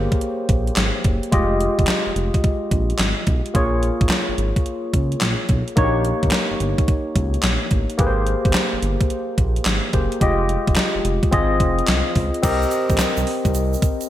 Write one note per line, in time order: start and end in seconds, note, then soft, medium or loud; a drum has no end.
0.00 1.28 A#3 medium
0.00 1.28 G4 medium
0.00 1.29 G#4 medium
0.00 1.29 C5 medium
0.00 1.34 C#5 medium
0.12 kick medium
0.12 closed hi-hat medium
0.21 closed hi-hat medium
0.49 0.71 A#1 medium
0.49 kick medium
0.49 closed hi-hat medium
0.67 closed hi-hat soft
0.76 0.91 G#1 medium
0.76 snare loud
0.76 clap medium
0.76 closed hi-hat medium
1.04 1.19 F#1 medium
1.04 kick medium
1.04 closed hi-hat medium
1.23 closed hi-hat medium
1.31 1.68 F1 loud
1.31 3.50 G#3 medium
1.31 3.50 F4 medium
1.31 3.51 G4 medium
1.31 3.51 D#5 medium
1.31 kick loud
1.31 closed hi-hat medium
1.60 closed hi-hat medium
1.79 1.86 F1 medium
1.79 kick medium
1.79 closed hi-hat soft
1.87 snare loud
1.87 clap loud
1.87 closed hi-hat medium
2.07 2.10 F1 soft
2.16 2.30 F1 medium
2.16 closed hi-hat medium
2.34 kick medium
2.34 closed hi-hat medium
2.44 kick medium
2.44 closed hi-hat medium
2.71 2.93 A#1 loud
2.71 kick medium
2.71 closed hi-hat medium
2.90 closed hi-hat soft
2.99 3.13 G#1 loud
2.99 snare loud
2.99 clap medium
2.99 closed hi-hat medium
3.27 3.41 B1 medium
3.27 kick medium
3.27 closed hi-hat medium
3.46 closed hi-hat medium
3.54 3.91 A#1 loud
3.54 5.72 A#3 medium
3.54 5.73 F4 medium
3.54 5.73 G#4 medium
3.54 5.74 C#5 medium
3.54 kick loud
3.54 closed hi-hat medium
3.83 closed hi-hat medium
4.01 4.08 G#1 medium
4.01 kick medium
4.01 closed hi-hat soft
4.09 snare loud
4.09 clap medium
4.09 closed hi-hat medium
4.29 4.33 G#1 soft
4.38 4.52 G#1 medium
4.38 closed hi-hat medium
4.56 kick medium
4.56 closed hi-hat medium
4.66 closed hi-hat medium
4.94 5.15 C#2 medium
4.94 kick medium
4.94 closed hi-hat medium
5.12 closed hi-hat soft
5.21 5.36 A#1 loud
5.21 snare loud
5.21 clap medium
5.21 closed hi-hat medium
5.49 5.63 B1 medium
5.49 kick medium
5.49 closed hi-hat medium
5.68 closed hi-hat medium
5.76 6.13 A#1 loud
5.76 7.94 A#3 medium
5.76 7.95 D#4 medium
5.76 5.86 F#4 medium
5.76 7.96 C#5 medium
5.76 kick loud
5.76 closed hi-hat medium
5.84 7.97 G4 medium
6.05 closed hi-hat medium
6.23 6.30 G1 medium
6.23 kick medium
6.23 closed hi-hat soft
6.31 snare loud
6.31 clap loud
6.31 closed hi-hat medium
6.51 6.55 G1 soft
6.60 6.74 G1 medium
6.60 closed hi-hat medium
6.78 kick medium
6.78 closed hi-hat medium
6.88 kick loud
6.88 closed hi-hat medium
7.16 7.37 C#2 medium
7.16 kick medium
7.16 closed hi-hat medium
7.34 closed hi-hat soft
7.43 7.58 A#1 loud
7.43 snare loud
7.43 clap medium
7.43 closed hi-hat medium
7.71 7.85 A1 medium
7.71 kick medium
7.71 closed hi-hat medium
7.90 closed hi-hat medium
7.98 8.35 G#1 loud
7.98 9.89 A#3 medium
7.98 9.89 G4 medium
7.98 9.90 G#4 medium
7.98 8.08 B4 medium
7.98 kick loud
7.98 closed hi-hat medium
8.07 9.93 C5 medium
8.27 closed hi-hat medium
8.45 8.52 G1 medium
8.45 kick medium
8.45 closed hi-hat soft
8.53 snare loud
8.53 clap loud
8.53 closed hi-hat medium
8.73 8.77 G1 soft
8.82 8.97 G1 medium
8.82 closed hi-hat medium
9.01 kick medium
9.01 closed hi-hat medium
9.10 closed hi-hat medium
9.38 9.59 A#1 medium
9.38 kick loud
9.38 closed hi-hat medium
9.56 closed hi-hat medium
9.65 9.80 G#1 loud
9.65 snare loud
9.65 clap loud
9.65 closed hi-hat medium
9.93 10.08 F#1 medium
9.93 10.21 A#3 medium
9.93 10.21 G4 soft
9.93 10.21 G#4 soft
9.93 10.22 C5 medium
9.93 kick medium
9.93 closed hi-hat medium
10.12 closed hi-hat medium
10.20 10.57 F1 loud
10.20 11.30 G#3 medium
10.20 11.30 F4 medium
10.20 11.30 G4 medium
10.20 11.31 D#5 medium
10.20 kick loud
10.20 closed hi-hat medium
10.49 closed hi-hat medium
10.67 10.75 F1 medium
10.67 kick medium
10.67 closed hi-hat soft
10.76 snare loud
10.76 clap medium
10.76 closed hi-hat medium
10.95 10.99 F1 medium
11.05 11.19 F1 medium
11.05 closed hi-hat medium
11.23 kick medium
11.23 closed hi-hat medium
11.31 11.62 G#1 loud
11.31 12.41 C4 medium
11.31 12.41 F4 medium
11.31 12.42 G#4 medium
11.31 12.42 D#5 medium
11.31 kick loud
11.31 closed hi-hat medium
11.60 11.82 F1 medium
11.60 kick medium
11.60 closed hi-hat medium
11.79 closed hi-hat soft
11.88 12.02 C2 loud
11.88 snare loud
11.88 clap medium
11.88 closed hi-hat medium
12.15 12.30 C#2 loud
12.15 kick medium
12.15 open hi-hat medium
12.34 closed hi-hat medium
12.42 12.65 C2 loud
12.42 14.09 C4 medium
12.42 14.09 G4 medium
12.42 14.09 A#4 medium
12.42 14.09 D#5 medium
12.42 kick loud
12.42 closed hi-hat medium
12.42 crash loud
12.42 shaker medium
12.62 shaker soft
12.71 closed hi-hat medium
12.71 shaker soft
12.89 12.97 A#1 medium
12.89 kick medium
12.89 closed hi-hat soft
12.89 shaker soft
12.98 13.06 C2 soft
12.98 snare loud
12.98 clap loud
12.98 closed hi-hat medium
12.98 shaker medium
13.17 13.25 C2 medium
13.17 shaker soft
13.27 open hi-hat medium
13.45 13.52 C2 loud
13.45 kick medium
13.45 closed hi-hat medium
13.45 shaker soft
13.54 13.76 C2 loud
13.54 closed hi-hat medium
13.54 shaker medium
13.73 shaker soft
13.82 kick medium
13.82 closed hi-hat medium
13.82 shaker soft
14.01 closed hi-hat soft
14.01 shaker soft